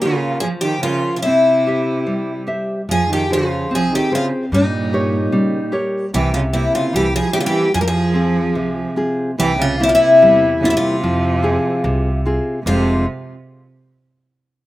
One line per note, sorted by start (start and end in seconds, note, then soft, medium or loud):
0.00 0.40 C#3 medium
0.00 0.41 A#3 medium
0.00 0.40 F4 medium
0.04 0.68 F4 medium
0.04 0.68 A#4 soft
0.04 0.68 C#5 medium
0.40 0.51 F3 medium
0.40 1.22 F3 medium
0.40 0.46 G#4 loud
0.61 0.80 D#3 medium
0.61 0.83 G4 medium
0.81 1.13 C#3 medium
0.81 1.15 F4 medium
0.81 1.16 F4 medium
0.81 1.17 A#4 soft
0.81 1.17 C#5 medium
1.16 1.21 C#3 soft
1.16 1.22 F4 medium
1.22 2.42 C3 medium
1.22 2.04 C4 medium
1.22 2.42 E4 medium
1.67 2.31 G4 medium
1.67 2.32 C5 soft
1.67 2.32 E5 medium
2.07 2.87 G3 medium
2.47 2.80 G4 soft
2.47 2.81 C5 soft
2.47 2.81 E5 soft
2.89 3.72 F2 medium
2.89 3.69 F3 medium
2.89 3.08 F3 medium
2.89 3.11 G#4 medium
3.09 3.29 D#3 medium
3.09 3.31 G4 medium
3.30 3.69 C#3 medium
3.30 3.96 F4 soft
3.30 3.74 F4 medium
3.30 3.96 G#4 soft
3.30 3.97 C5 soft
3.71 3.98 C2 medium
3.71 3.91 F3 medium
3.71 4.50 C4 medium
3.75 3.94 G#4 medium
3.92 4.11 D#3 medium
3.92 4.14 G4 medium
4.12 4.30 C#3 medium
4.12 4.44 F4 soft
4.12 4.25 F4 medium
4.12 4.44 G#4 soft
4.12 4.45 C5 medium
4.52 5.33 G2 loud
4.52 5.70 A#2 medium
4.52 5.31 G3 medium
4.52 5.70 D#4 medium
4.93 5.57 G4 soft
4.93 5.58 A#4 soft
4.93 5.58 C#5 medium
5.32 5.59 C#3 medium
5.32 6.11 G3 medium
5.72 6.05 G4 soft
5.72 6.05 A#4 soft
5.72 6.05 C#5 medium
6.14 6.66 C2 loud
6.14 6.91 C3 medium
6.14 6.32 E3 medium
6.14 6.34 G4 medium
6.34 6.43 C#3 medium
6.34 6.39 F4 medium
6.53 6.72 C3 medium
6.53 7.17 A#3 soft
6.53 7.17 C4 soft
6.53 6.72 E4 medium
6.53 7.17 E4 medium
6.73 6.92 C#3 medium
6.73 6.95 F4 medium
6.93 7.20 C2 loud
6.93 7.12 E3 medium
6.93 7.71 G3 medium
6.93 7.13 G4 medium
7.14 7.32 F3 medium
7.14 7.33 G#4 loud
7.33 7.40 E3 medium
7.33 7.66 A#3 soft
7.33 7.66 C4 medium
7.33 7.66 E4 medium
7.33 7.40 G4 loud
7.40 7.46 C#3 medium
7.40 7.46 F4 medium
7.46 7.71 E3 medium
7.46 7.74 G4 medium
7.74 8.56 F2 loud
7.74 7.79 F3 medium
7.74 8.54 F3 medium
7.74 7.80 G#4 medium
7.80 7.87 G3 medium
7.80 7.87 A#4 medium
7.87 8.93 F3 medium
7.87 8.93 G#4 medium
8.14 8.81 C4 medium
8.14 8.81 F4 soft
8.14 8.81 G#4 soft
8.55 8.83 C#2 medium
8.55 9.36 C3 medium
8.96 9.30 C4 soft
8.96 9.30 F4 soft
8.96 9.31 G#4 medium
9.38 9.93 C2 medium
9.38 10.19 C3 medium
9.38 9.58 E3 medium
9.38 9.61 G4 loud
9.58 9.78 C#3 medium
9.58 9.82 F4 medium
9.80 9.87 C3 medium
9.80 10.45 A#3 medium
9.80 10.45 C4 medium
9.80 10.46 E4 medium
9.80 9.89 E4 medium
9.87 9.92 C#3 medium
9.87 9.94 F4 medium
9.93 10.57 C3 medium
9.93 10.64 E4 medium
10.22 10.75 E2 loud
10.22 11.00 G3 medium
10.60 10.66 C#3 medium
10.60 10.95 A#3 medium
10.60 10.95 C4 soft
10.64 10.73 C3 medium
10.64 10.95 E4 medium
10.64 10.70 F4 medium
10.70 12.19 C3 medium
10.70 10.76 E4 medium
10.77 12.21 F4 medium
11.03 11.56 F2 loud
11.03 11.81 F3 medium
11.43 12.08 C4 medium
11.43 12.08 F4 soft
11.43 12.09 G#4 medium
11.84 12.37 C2 loud
11.84 12.63 C3 medium
12.26 12.58 C4 soft
12.26 12.59 F4 soft
12.26 12.58 G#4 medium
12.64 13.04 F1 loud
12.64 13.04 F2 medium
12.64 13.03 C3 medium
12.64 13.04 C3 medium
12.64 13.04 F3 medium
12.64 13.05 G#3 medium
12.64 13.04 F4 medium
12.68 13.05 C4 medium